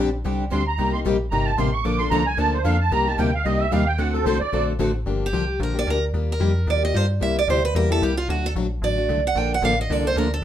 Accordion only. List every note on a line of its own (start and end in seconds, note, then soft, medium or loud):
0.52 0.67 C6 medium
0.67 0.92 A#5 medium
0.93 1.00 C6 medium
1.30 1.46 A#5 medium
1.46 1.57 A5 loud
1.58 1.73 C6 medium
1.73 1.84 C#6 medium
1.84 2.00 D6 medium
1.99 2.11 C6 loud
2.10 2.26 A#5 loud
2.27 2.38 G#5 medium
2.39 2.54 A5 loud
2.54 2.65 C5 medium
2.64 2.80 F5 medium
2.80 2.92 A5 medium
2.92 3.07 A#5 loud
3.08 3.19 A5 medium
3.19 3.34 G5 medium
3.34 3.45 F5 medium
3.45 3.61 D#5 medium
3.60 3.72 E5 medium
3.72 3.88 F5 medium
3.86 3.98 G5 loud
3.98 4.14 F#5 medium
4.14 4.25 A4 medium
4.24 4.40 C5 medium
4.40 4.66 D5 loud